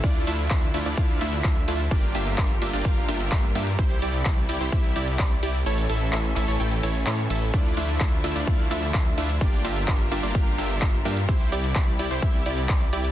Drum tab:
RD |--x---x---x---x-|--x---x---x---x-|--x---x---x---x-|--x---x---x---x-|
HH |xxoxxxoxxxoxx-ox|xxoxxxoxxxoxx-ox|xxoxxxoxxxoxx-ox|xooxxxoxxxoxxxox|
CP |----x-------x---|----x-------x---|----x-------x---|----x-x-----x---|
BD |o---o---o---o---|o---o---o---o---|o---o---o---o---|----------------|

RD |--x---x---x---x-|--x---x---x---x-|--x---x---x---x-|
HH |xxoxxxoxxxoxx-ox|xxoxxxoxxxoxx-ox|xxoxxxoxxxoxx-ox|
CP |----x-------x---|----x-------x---|----x-------x---|
BD |o---o---o---o---|o---o---o---o---|o---o---o---o---|